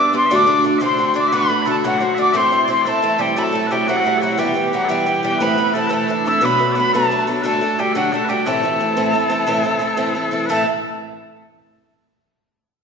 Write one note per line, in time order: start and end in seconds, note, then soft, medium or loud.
0.00 0.12 G3 medium
0.00 0.12 B3 medium
0.00 0.12 D4 medium
0.00 0.13 D4 medium
0.00 0.13 G4 medium
0.00 0.26 D5 medium
0.00 0.15 D6 loud
0.13 0.30 G3 medium
0.13 0.31 B3 medium
0.13 0.30 C4 medium
0.13 0.30 D4 medium
0.13 0.31 G4 medium
0.13 0.36 C6 medium
0.26 0.30 E5 medium
0.30 0.48 D2 medium
0.30 0.48 A2 medium
0.30 0.45 D3 medium
0.30 0.45 A3 medium
0.30 0.46 D4 medium
0.30 0.47 F#4 medium
0.30 0.78 D5 medium
0.35 0.63 D6 loud
0.46 0.63 D3 medium
0.46 0.63 A3 medium
0.46 0.63 D4 medium
0.46 0.64 F#4 medium
0.64 0.80 D3 medium
0.64 0.80 A3 medium
0.64 0.80 D4 medium
0.64 0.80 F#4 medium
0.78 0.98 D2 medium
0.78 0.98 A2 medium
0.78 0.96 D3 medium
0.78 0.97 A3 medium
0.78 0.97 D4 medium
0.78 0.98 F#4 medium
0.78 1.16 C5 medium
0.78 0.82 E5 medium
0.83 1.14 C4 medium
0.83 1.21 C6 medium
0.97 1.13 D3 soft
0.97 1.13 A3 medium
0.97 1.14 D4 medium
0.97 1.14 F#4 medium
1.14 1.31 D3 medium
1.14 1.31 A3 medium
1.14 1.32 D4 medium
1.14 1.31 F#4 medium
1.14 1.28 D5 medium
1.20 1.38 D6 medium
1.28 1.50 D2 medium
1.28 1.32 E5 medium
1.32 1.50 A2 medium
1.32 1.47 D3 medium
1.32 1.48 A3 medium
1.32 1.65 B3 medium
1.32 1.49 D4 medium
1.32 1.50 F#4 medium
1.32 1.62 B4 medium
1.36 1.69 B5 medium
1.48 1.64 D3 medium
1.48 1.65 A3 medium
1.48 1.66 D4 medium
1.48 1.67 F#4 medium
1.62 1.83 D3 medium
1.62 1.84 A4 medium
1.62 1.66 D5 medium
1.66 1.84 A3 medium
1.66 1.83 A3 medium
1.66 1.83 D4 medium
1.66 1.84 F#4 medium
1.66 1.76 A5 medium
1.84 2.01 D2 medium
1.84 2.01 A2 medium
1.84 1.99 D3 medium
1.84 2.16 F#3 medium
1.84 1.99 A3 medium
1.84 2.00 D4 medium
1.84 1.98 F#4 medium
1.84 2.00 F#4 medium
1.84 2.17 F#5 medium
1.98 2.16 D3 medium
1.98 2.16 A3 medium
1.98 2.17 D4 medium
1.98 2.18 F#4 medium
1.98 2.15 C5 medium
1.98 2.02 D5 medium
2.15 2.34 D3 medium
2.15 2.34 A3 medium
2.15 2.34 D4 medium
2.15 2.35 D4 medium
2.15 2.19 E5 medium
2.19 2.34 F#4 medium
2.19 2.32 D5 medium
2.19 2.38 D6 medium
2.32 2.51 A2 medium
2.32 2.50 E3 medium
2.32 2.51 A3 medium
2.32 2.51 C4 medium
2.32 2.67 C4 medium
2.32 2.52 E4 medium
2.32 2.65 C5 medium
2.32 2.36 E5 medium
2.37 2.70 C6 medium
2.51 2.67 E3 medium
2.51 2.69 A3 medium
2.51 2.68 C4 medium
2.51 2.69 E4 medium
2.65 2.85 E3 medium
2.65 2.84 C4 medium
2.65 2.70 D5 medium
2.69 2.85 A3 medium
2.69 2.85 C4 medium
2.69 2.86 E4 medium
2.69 2.82 C5 medium
2.69 2.90 C6 medium
2.82 3.03 A2 medium
2.82 3.21 A4 medium
2.82 2.86 D5 medium
2.86 3.01 E3 medium
2.86 3.02 A3 medium
2.86 3.01 C4 medium
2.86 3.02 E4 medium
2.86 3.23 A5 medium
3.02 3.17 E3 medium
3.02 3.19 A3 medium
3.02 3.18 A3 medium
3.02 3.18 C4 medium
3.02 3.19 E4 medium
3.18 3.36 E3 medium
3.18 3.35 G3 medium
3.18 3.36 A3 medium
3.18 3.36 C4 medium
3.18 3.36 E4 medium
3.18 3.37 G4 medium
3.18 3.40 G5 medium
3.36 3.51 F#3 medium
3.36 3.52 A3 medium
3.36 3.53 A3 medium
3.36 3.53 C4 medium
3.36 3.53 E4 medium
3.36 3.67 A4 medium
3.36 3.44 B5 medium
3.43 3.73 A5 medium
3.52 3.69 F#3 medium
3.52 3.70 A3 medium
3.52 3.72 A3 medium
3.52 3.70 C4 medium
3.52 3.71 E4 medium
3.67 3.87 F#3 medium
3.67 3.88 A3 medium
3.67 3.72 B4 medium
3.71 3.87 G3 medium
3.71 3.87 C4 medium
3.71 3.88 E4 medium
3.71 3.87 G4 medium
3.71 3.91 G5 medium
3.87 4.03 F#3 medium
3.87 4.05 F#3 medium
3.87 4.04 A3 medium
3.87 4.05 C4 medium
3.87 4.05 E4 medium
3.87 3.96 F#4 medium
3.87 4.22 F#5 medium
3.96 4.10 F#4 medium
3.96 4.00 A4 medium
4.04 4.20 F#3 medium
4.04 4.22 G3 medium
4.04 4.21 A3 medium
4.04 4.22 C4 medium
4.04 4.22 E4 medium
4.10 4.18 F#4 medium
4.18 4.37 F#3 medium
4.18 4.22 A4 medium
4.22 4.38 F#3 medium
4.22 4.38 A3 medium
4.22 4.38 C4 medium
4.22 4.38 E4 medium
4.22 4.39 F#4 medium
4.22 4.40 F#5 medium
4.38 4.53 E3 medium
4.38 4.54 G3 medium
4.38 4.71 G3 medium
4.38 4.54 B3 medium
4.38 4.55 E4 medium
4.38 4.85 G4 medium
4.38 4.73 G5 medium
4.54 4.71 E3 soft
4.54 4.72 G3 medium
4.54 4.73 B3 medium
4.54 4.73 E4 medium
4.73 4.87 E3 medium
4.73 4.89 F#3 medium
4.73 4.88 G3 medium
4.73 4.89 B3 medium
4.73 4.88 E4 medium
4.73 4.92 F#5 medium
4.85 5.05 E3 medium
4.85 5.05 G3 medium
4.85 5.39 G4 medium
4.85 4.88 A4 medium
4.89 5.23 G3 medium
4.89 5.05 B3 medium
4.89 5.06 E4 medium
4.89 5.23 G5 medium
5.06 5.22 E3 medium
5.06 5.23 G3 medium
5.06 5.23 B3 medium
5.06 5.23 E4 medium
5.23 5.40 E3 medium
5.23 5.40 G3 medium
5.23 5.41 B3 medium
5.23 5.40 E4 medium
5.23 5.43 G5 medium
5.39 5.58 A2 medium
5.39 5.56 E3 medium
5.39 5.56 A3 medium
5.39 5.76 B3 medium
5.39 5.57 C4 medium
5.39 5.57 E4 medium
5.39 5.74 B4 medium
5.39 5.75 B5 medium
5.57 5.72 E3 medium
5.57 5.74 A3 medium
5.57 5.74 C4 medium
5.57 5.74 E4 medium
5.74 5.89 E3 medium
5.74 5.89 A3 medium
5.74 5.92 A3 medium
5.74 5.89 C4 medium
5.74 5.89 E4 medium
5.74 5.87 A4 medium
5.74 5.92 A5 medium
5.87 6.08 A2 medium
5.87 6.07 E3 medium
5.87 6.08 A3 medium
5.87 6.08 C4 medium
5.87 6.08 E4 medium
5.87 6.43 A4 medium
5.87 5.90 B4 medium
5.93 6.08 A3 medium
5.93 6.29 A5 medium
6.08 6.24 E3 medium
6.08 6.25 A3 medium
6.08 6.25 C4 medium
6.08 6.25 D4 medium
6.08 6.25 E4 medium
6.26 6.41 E3 medium
6.26 6.41 A3 medium
6.26 6.41 C4 medium
6.26 6.42 E4 medium
6.26 6.44 E4 medium
6.26 6.46 E6 medium
6.41 6.59 B2 medium
6.41 6.57 F#3 medium
6.41 6.58 A3 medium
6.41 6.58 B3 medium
6.41 6.59 D4 medium
6.41 6.72 B4 medium
6.41 6.78 B5 loud
6.45 6.79 B3 medium
6.58 6.74 F#3 medium
6.58 6.76 A3 medium
6.58 6.75 B3 medium
6.58 6.77 D4 medium
6.72 6.93 F#3 medium
6.72 6.93 B3 medium
6.72 6.94 B4 medium
6.72 6.76 D5 medium
6.77 6.94 A3 medium
6.77 6.94 B3 medium
6.77 6.94 D4 medium
6.77 6.94 B5 medium
6.94 7.11 B2 medium
6.94 7.10 F#3 medium
6.94 7.11 A3 medium
6.94 7.26 A3 medium
6.94 7.10 B3 medium
6.94 7.11 D4 medium
6.94 7.43 A4 medium
6.94 7.26 A5 medium
7.11 7.26 F#3 medium
7.11 7.27 A3 medium
7.11 7.27 B3 medium
7.11 7.28 D4 medium
7.27 7.43 F#3 medium
7.27 7.43 A3 medium
7.27 7.44 B3 medium
7.27 7.43 D4 medium
7.43 7.61 D2 medium
7.43 7.61 A2 medium
7.43 7.60 D3 medium
7.43 7.60 A3 medium
7.43 7.61 D4 medium
7.43 7.62 F#4 medium
7.43 7.80 A4 medium
7.43 7.46 B4 medium
7.43 7.81 A5 medium
7.47 7.81 A3 medium
7.61 7.77 D3 medium
7.61 7.77 A3 medium
7.61 7.78 D4 medium
7.61 7.79 F#4 medium
7.78 7.94 D3 medium
7.78 7.96 G3 medium
7.78 7.94 A3 medium
7.78 7.94 D4 medium
7.78 7.94 F#4 medium
7.78 7.93 G4 medium
7.78 7.95 G5 medium
7.93 8.12 D2 medium
7.93 8.12 A2 medium
7.93 8.11 D3 medium
7.93 8.12 F#3 medium
7.93 8.11 A3 medium
7.93 8.13 D4 medium
7.93 8.12 F#4 medium
7.93 7.96 A4 medium
7.93 8.12 F#5 medium
8.12 8.27 D3 medium
8.12 8.28 A3 medium
8.12 8.31 A3 medium
8.12 8.28 D4 medium
8.12 8.29 F#4 medium
8.12 8.25 A4 medium
8.12 8.31 A5 medium
8.25 8.46 D3 medium
8.25 8.47 G4 medium
8.25 8.29 B4 medium
8.29 8.45 G3 medium
8.29 8.46 A3 medium
8.29 8.47 D4 medium
8.29 8.47 F#4 medium
8.29 8.49 G5 medium
8.46 8.63 A2 medium
8.46 8.61 E3 medium
8.46 8.63 A3 medium
8.46 10.13 A3 medium
8.46 8.62 C4 medium
8.46 8.64 E4 medium
8.46 10.46 A4 medium
8.46 10.17 A5 medium
8.63 8.79 E3 medium
8.63 8.80 A3 medium
8.63 8.79 C4 medium
8.63 8.80 E4 medium
8.80 8.95 E3 medium
8.80 8.96 A3 medium
8.80 8.96 C4 medium
8.80 8.97 E4 medium
8.96 9.14 A2 medium
8.96 9.12 E3 medium
8.96 9.14 A3 medium
8.96 9.13 C4 medium
8.96 9.14 E4 medium
9.13 9.28 E3 medium
9.13 9.30 A3 medium
9.13 9.29 C4 medium
9.13 9.30 E4 medium
9.29 9.46 E3 medium
9.29 9.46 A3 medium
9.29 9.46 C4 medium
9.29 9.47 E4 medium
9.47 9.64 A2 medium
9.47 9.63 E3 medium
9.47 9.64 A3 medium
9.47 9.63 C4 medium
9.47 9.65 E4 loud
9.64 9.78 E3 medium
9.64 9.80 A3 medium
9.64 9.79 C4 medium
9.64 9.80 E4 medium
9.79 9.96 E3 medium
9.79 9.96 A3 medium
9.79 9.96 C4 medium
9.79 9.97 E4 medium
9.97 10.15 A2 medium
9.97 10.14 E3 medium
9.97 10.15 A3 medium
9.97 10.15 C4 medium
9.97 10.15 E4 medium
10.15 10.30 E3 medium
10.15 10.32 A3 medium
10.15 10.31 C4 medium
10.15 10.32 E4 medium
10.31 10.48 E3 medium
10.31 10.50 A3 medium
10.31 10.49 C4 medium
10.31 10.50 E4 medium
10.46 10.63 A2 medium
10.46 10.63 E3 medium
10.46 10.66 A3 medium
10.46 10.51 B4 medium
10.51 10.64 A3 medium
10.51 10.64 C4 medium
10.51 10.64 E4 loud
10.51 10.66 A4 medium
10.51 10.66 A5 medium